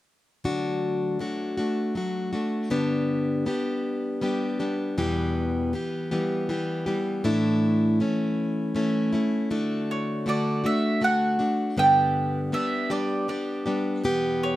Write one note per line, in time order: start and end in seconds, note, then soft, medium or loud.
0.44 1.20 D3 medium
0.44 1.18 F#3 medium
0.44 1.19 A3 medium
0.44 1.20 D4 medium
0.44 1.20 F#4 medium
1.19 1.57 F#3 soft
1.19 1.58 A3 soft
1.19 1.57 D4 soft
1.19 1.56 F#4 medium
1.57 1.95 A3 soft
1.57 1.96 D4 soft
1.57 1.95 F#4 soft
1.95 2.33 F#3 soft
1.95 2.34 A3 soft
1.95 2.33 D4 soft
1.95 2.31 F#4 soft
2.33 2.71 A3 soft
2.33 2.70 D4 soft
2.33 2.71 F#4 soft
2.70 3.46 G2 medium
2.70 3.46 D3 medium
2.70 3.45 G3 medium
2.70 3.46 B3 medium
2.70 3.46 D4 medium
2.70 3.47 G4 medium
3.46 4.20 G3 soft
3.46 4.21 B3 soft
3.46 4.22 D4 medium
3.46 4.22 G4 medium
4.21 4.60 G3 soft
4.21 4.59 B3 medium
4.21 4.59 D4 medium
4.21 4.58 G4 medium
4.59 4.97 G3 soft
4.59 4.97 B3 soft
4.59 4.98 D4 soft
4.59 4.97 G4 soft
4.98 5.73 E2 medium
4.98 5.73 B2 medium
4.98 5.73 E3 medium
4.98 5.73 G3 medium
4.98 5.73 B3 medium
4.98 5.74 G4 medium
5.73 6.11 E3 medium
5.73 6.11 G3 soft
5.73 6.11 B3 medium
5.73 6.10 G4 medium
6.11 6.48 E3 soft
6.11 6.48 G3 soft
6.11 6.49 B3 soft
6.11 6.49 G4 soft
6.49 6.87 E3 medium
6.49 6.86 G3 medium
6.49 6.85 B3 soft
6.49 6.85 G4 medium
6.86 7.23 E3 soft
6.86 7.24 G3 soft
6.86 7.24 B3 soft
6.86 7.24 G4 soft
7.24 8.00 A2 medium
7.24 7.99 E3 medium
7.24 8.00 A3 medium
7.24 8.00 D4 medium
7.24 8.00 E4 medium
8.00 8.73 E3 medium
8.00 8.74 A3 soft
8.00 8.75 C#4 soft
8.00 8.75 E4 medium
8.75 9.13 E3 soft
8.75 9.14 A3 medium
8.75 9.12 C#4 medium
8.75 9.11 E4 medium
9.13 9.50 A3 soft
9.13 9.51 C#4 soft
9.13 9.51 E4 soft
9.50 10.25 D3 medium
9.50 10.25 A3 medium
9.50 10.27 D4 medium
9.50 10.26 F#4 medium
9.91 10.28 C#5 medium
10.26 10.64 D3 soft
10.26 10.65 A3 soft
10.26 10.63 D4 soft
10.26 10.62 F#4 soft
10.26 10.67 D5 medium
10.64 11.00 A3 soft
10.64 11.01 D4 soft
10.64 11.01 F#4 soft
10.64 11.04 E5 medium
11.01 11.39 D3 soft
11.01 11.39 A3 soft
11.01 11.38 D4 soft
11.01 11.38 F#4 soft
11.01 11.75 F#5 medium
11.39 11.77 A3 soft
11.39 11.77 D4 soft
11.39 11.77 F#4 soft
11.77 12.53 G2 medium
11.77 12.53 D3 medium
11.77 12.52 G3 medium
11.77 12.53 B3 medium
11.77 12.52 D4 medium
11.77 12.54 G4 medium
11.77 12.54 G5 medium
12.52 12.91 G3 soft
12.52 12.90 B3 medium
12.52 12.89 D4 medium
12.52 12.89 G4 soft
12.52 12.89 E5 medium
12.90 13.27 G3 soft
12.90 13.28 B3 soft
12.90 13.28 D4 soft
12.90 13.29 G4 soft
12.90 13.28 D5 medium
13.28 13.66 G3 soft
13.28 13.66 B3 soft
13.28 13.65 D4 soft
13.28 13.65 G4 soft
13.28 13.82 D5 medium
13.66 14.03 G3 soft
13.66 14.04 B3 soft
13.66 14.04 D4 soft
13.66 14.04 G4 soft
14.04 14.56 E2 medium
14.04 14.56 B2 medium
14.04 14.56 E3 medium
14.04 14.56 G3 medium
14.04 14.56 B3 medium
14.04 14.56 G4 medium
14.43 14.56 C#5 medium